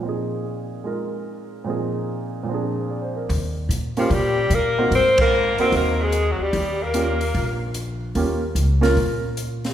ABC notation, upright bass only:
X:1
M:4/4
L:1/8
Q:"Swing" 1/4=148
K:Ebmix
V:1 name="Upright bass" clef=bass
z8 | z8 | E,,2 B,,2 B,,2 B,,2 | A,,3 z E,,3 z |
E,,4 B,,,4 | E,,2 D,,2 B,,4 |]